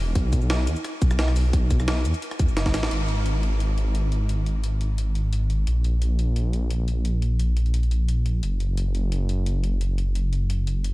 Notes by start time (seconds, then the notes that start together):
0.00 E1
0.15 B1, kick, closed hi-hat
0.33 kick, closed hi-hat, shaker
0.42 B1, shaker
0.50 snare, closed hi-hat
0.67 E2, closed hi-hat, shaker
0.76 shaker
0.84 cross-stick, closed hi-hat
1.02 B1, kick, closed hi-hat, shaker
1.11 cross-stick, shaker
1.19 snare, closed hi-hat
1.28 cross-stick
1.36 open hi-hat, shaker
1.53 B1, kick, closed hi-hat
1.71 kick, closed hi-hat, shaker
1.80 B1, cross-stick, shaker
1.88 snare, closed hi-hat
2.05 E2, closed hi-hat, shaker
2.14 closed hi-hat, shaker
2.22 closed hi-hat
2.31 cross-stick, closed hi-hat
2.39 E2, kick, closed hi-hat, shaker
2.48 F#1, shaker
2.57 snare, closed hi-hat
2.66 kick, snare, closed hi-hat
2.74 A1, snare, open hi-hat, shaker
2.83 snare
2.91 G#1, closed hi-hat
3.08 closed hi-hat
3.26 closed hi-hat
3.43 closed hi-hat
3.60 closed hi-hat
3.78 closed hi-hat
3.95 closed hi-hat
4.12 closed hi-hat
4.29 closed hi-hat
4.46 closed hi-hat
4.64 closed hi-hat
4.81 closed hi-hat
4.98 closed hi-hat
5.15 closed hi-hat
5.33 closed hi-hat
5.50 closed hi-hat
5.67 A#1, closed hi-hat
5.84 closed hi-hat
6.02 closed hi-hat
6.19 closed hi-hat
6.36 closed hi-hat
6.53 closed hi-hat
6.70 closed hi-hat
6.88 closed hi-hat
7.05 closed hi-hat
7.22 closed hi-hat
7.39 closed hi-hat
7.57 closed hi-hat
7.66 closed hi-hat
7.74 closed hi-hat
7.83 closed hi-hat
7.91 closed hi-hat
8.08 closed hi-hat
8.26 closed hi-hat
8.43 F#1, closed hi-hat
8.60 closed hi-hat
8.77 closed hi-hat
8.95 closed hi-hat
9.12 closed hi-hat
9.29 closed hi-hat
9.46 closed hi-hat
9.64 closed hi-hat
9.81 closed hi-hat
9.98 closed hi-hat
10.15 closed hi-hat
10.33 closed hi-hat
10.50 closed hi-hat
10.67 closed hi-hat
10.84 closed hi-hat